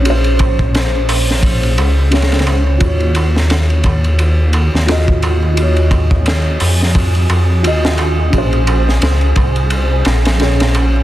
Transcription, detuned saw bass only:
X:1
M:4/4
L:1/16
Q:"Swing 16ths" 1/4=87
K:Bbm
V:1 name="Detuned saw bass" clef=bass
B,,,8- B,,,2 D,,6 | E,,8- E,,3 E,,4- E,,- | E,,6 F,,4 F,,2 E,,4 | B,,,4 D,,2 C,,4 B,,,6 |]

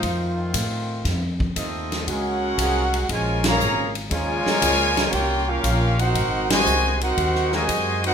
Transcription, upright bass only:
X:1
M:4/4
L:1/8
Q:"Swing" 1/4=118
K:Ab
V:1 name="Upright bass" clef=bass
F,,2 =A,,2 F,,2 E,,2 | D,,2 C,,2 B,,,2 A,,,2 | E,, z D,,2 C,,2 B,,,2 | A,,,2 C,,2 E,,2 _G,,2 |]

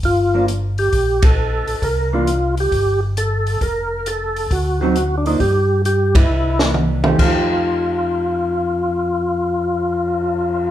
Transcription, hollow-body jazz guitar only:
X:1
M:4/4
L:1/8
Q:"Swing" 1/4=134
K:Fmix
V:1 name="Hollow-body jazz guitar"
z [F,B,D] z6 | z [=E,B,D] z6 | z4 z [D,^F,CE] z [=F,B,D] | z4 z [=E,B,D]2 [F,A,_EG] |
[F,A,EG]8- | [F,A,EG]8 |]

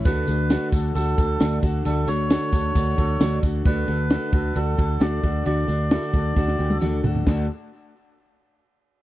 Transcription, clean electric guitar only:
X:1
M:4/4
L:1/16
Q:1/4=133
K:D
V:1 name="Clean electric guitar"
D,2 D2 F2 A2 F2 A2 D2 F2 | D,2 D2 F2 A2 F2 A2 D2 F2 | D,2 D2 F2 A2 F2 A2 D2 F2 | D,2 D2 E F A2 F2 G A D2 F2 |
[D,A,DFA]2 z12 z2 |]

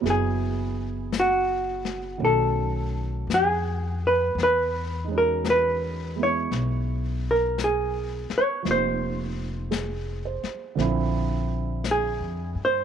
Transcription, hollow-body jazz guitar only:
X:1
M:4/4
L:1/8
Q:"Swing" 1/4=56
K:Ephr
V:1 name="Hollow-body jazz guitar"
^G2 ^F2 A2 _A B | B _B =B _d2 _B ^G d | c6 _A c |]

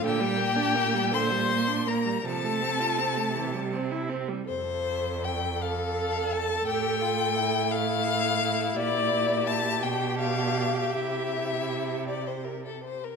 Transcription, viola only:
X:1
M:6/8
L:1/16
Q:3/8=54
K:F
V:1 name="Viola"
D, G, B, D B, G, D, G, B, D B, G, | F, A, C F C A, E, G, C E C G, | A12- | A12 |
G12- | G8- G3 z |]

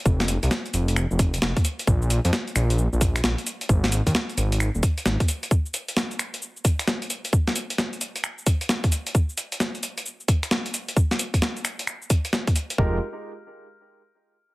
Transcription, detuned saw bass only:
X:1
M:4/4
L:1/16
Q:"Swing 16ths" 1/4=132
K:Fm
V:1 name="Detuned saw bass" clef=bass
F,,,3 C,, z2 F,,,3 F,,,3 F,,, z3 | B,,,3 F,, z2 B,,,3 B,,,3 B,,, z3 | A,,,3 E,, z2 A,,,3 E,,, z2 A,,, z3 | z16 |
z16 | z16 | z16 | F,,,2 z12 z2 |]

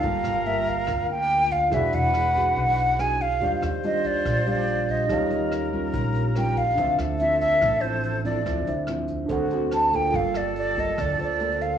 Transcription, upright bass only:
X:1
M:4/4
L:1/8
Q:1/4=142
K:Dm
V:1 name="Upright bass" clef=bass
G,,, G,,,3 D,,4 | E,,, E,,,3 =B,,,4 | _E,, E,,3 B,,,4 | _E,, E,,3 B,,,4 |
D,, D,,3 A,,,4 | D,, D,,3 D,,4 | [K:Gm] G,,,4 D,, D,,3 |]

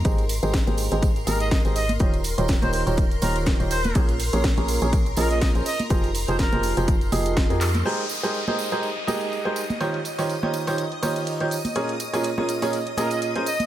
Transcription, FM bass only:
X:1
M:4/4
L:1/16
Q:"Swing 16ths" 1/4=123
K:Ab
V:1 name="FM bass" clef=bass
A,,,3 A,,,2 A,,,2 A,,,3 A,,,3 A,,,3 | E,,,3 E,,,2 E,,,2 E,,,3 E,,,3 E,,,3 | B,,,3 B,,,2 B,,,2 B,,,3 B,,,3 B,,, z2 | F,,,3 F,,,2 F,,,2 F,,,3 F,,,3 F,,3 |
z16 | z16 | z16 |]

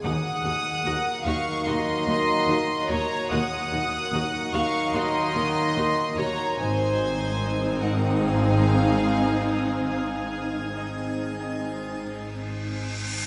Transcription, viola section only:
X:1
M:4/4
L:1/16
Q:1/4=73
K:Ebdor
V:1 name="Viola section"
[EG]2 [EG]2 [EG]2 [EG]2 [EG]2 [EG]2 [EG]2 [EG]2 | [EG]2 [EG]2 [EG]2 [EG]2 [EG]2 [EG]2 [EG]2 [EG]2 | [CE]16- | [CE]4 [CE]8- [CE]3 z |]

